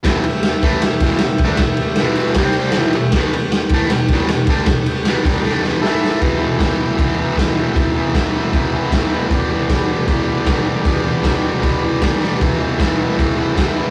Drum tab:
CC |--------|--------|--------|--------|
RD |xxxxxxxx|xxxxxxxx|xxxxxxxx|xxxx----|
SD |o-o-o-o-|o-o-o-o-|o-o-o-o-|o-o-oooo|
BD |o--o-o-o|o---o---|o--o-o-o|o--o----|

CC |x-x-x-x-|x-x-x-x-|x-x-x-x-|x-x-x-x-|
RD |--------|--------|--------|--------|
SD |--o---o-|--o---o-|--o---o-|--o---oo|
BD |o-o-o-o-|o-o-o-o-|o-o-o-o-|o-o-o-o-|

CC |x-x-x-x-|
RD |--------|
SD |--o---o-|
BD |o-o-o-o-|